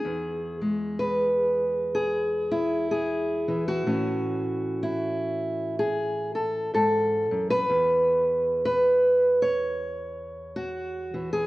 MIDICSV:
0, 0, Header, 1, 2, 480
1, 0, Start_track
1, 0, Key_signature, 4, "major"
1, 0, Tempo, 957549
1, 16, Time_signature, 4, 2, 24, 8
1, 5748, End_track
2, 0, Start_track
2, 0, Title_t, "Steel-string acoustic guitar"
2, 0, Program_c, 0, 25
2, 0, Note_on_c, 0, 68, 80
2, 23, Note_on_c, 0, 40, 65
2, 309, Note_on_c, 0, 56, 44
2, 498, Note_on_c, 0, 71, 90
2, 969, Note_off_c, 0, 68, 0
2, 975, Note_on_c, 0, 68, 88
2, 1259, Note_off_c, 0, 71, 0
2, 1261, Note_on_c, 0, 64, 78
2, 1454, Note_off_c, 0, 68, 0
2, 1460, Note_on_c, 0, 68, 89
2, 1744, Note_on_c, 0, 52, 61
2, 1841, Note_off_c, 0, 68, 0
2, 1844, Note_on_c, 0, 66, 89
2, 1935, Note_off_c, 0, 40, 0
2, 1935, Note_off_c, 0, 52, 0
2, 1935, Note_off_c, 0, 64, 0
2, 1937, Note_on_c, 0, 45, 67
2, 1937, Note_on_c, 0, 52, 48
2, 1939, Note_off_c, 0, 56, 0
2, 1941, Note_on_c, 0, 61, 45
2, 2420, Note_on_c, 0, 64, 81
2, 2897, Note_off_c, 0, 64, 0
2, 2897, Note_off_c, 0, 66, 0
2, 2903, Note_on_c, 0, 68, 89
2, 3181, Note_off_c, 0, 68, 0
2, 3183, Note_on_c, 0, 69, 84
2, 3374, Note_off_c, 0, 45, 0
2, 3375, Note_off_c, 0, 69, 0
2, 3376, Note_on_c, 0, 44, 66
2, 3381, Note_on_c, 0, 69, 90
2, 3661, Note_off_c, 0, 44, 0
2, 3665, Note_on_c, 0, 42, 62
2, 3759, Note_off_c, 0, 69, 0
2, 3761, Note_on_c, 0, 71, 107
2, 3834, Note_off_c, 0, 61, 0
2, 3855, Note_off_c, 0, 42, 0
2, 3857, Note_on_c, 0, 40, 73
2, 4332, Note_off_c, 0, 71, 0
2, 4338, Note_on_c, 0, 71, 102
2, 4719, Note_off_c, 0, 71, 0
2, 4723, Note_on_c, 0, 73, 100
2, 5294, Note_on_c, 0, 66, 89
2, 5578, Note_off_c, 0, 52, 0
2, 5584, Note_on_c, 0, 52, 59
2, 5677, Note_off_c, 0, 66, 0
2, 5679, Note_on_c, 0, 68, 95
2, 5748, Note_off_c, 0, 40, 0
2, 5748, Note_off_c, 0, 52, 0
2, 5748, Note_off_c, 0, 68, 0
2, 5748, Note_off_c, 0, 73, 0
2, 5748, End_track
0, 0, End_of_file